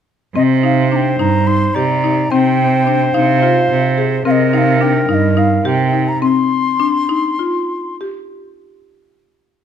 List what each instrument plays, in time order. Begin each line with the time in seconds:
0.35 cello C3, marimba C4, clarinet C5, flute D#5
0.63 marimba D#4, flute F5
0.92 marimba D4, flute A#5
0.96 flute G5
1.19 cello G2, marimba D#4, flute A#5
1.47 marimba D#4, flute C6
1.75 cello C3, marimba G4, clarinet D5, flute A#5
2.04 marimba D#4
2.31 cello C3, marimba C4, clarinet C5, flute G5
2.87 marimba D4
3.14 cello C3, marimba D#4, flute F5
3.43 marimba F4
3.70 cello C3
3.98 marimba G#4
4.25 cello C3, marimba C4, clarinet A#4, flute F5
4.31 flute D#5
4.53 marimba D#4, flute G5
4.58 flute F5
4.81 marimba D4, flute G5
5.09 cello G2, marimba D#4, flute F5
5.14 flute D#5
5.37 marimba D#4, flute F5
5.65 cello C3, marimba G4, flute G5
5.93 marimba D#4
6.08 flute A#5
6.22 marimba C4, flute C6
6.80 marimba D4
7.09 marimba D#4
7.39 marimba F4
8.01 marimba G4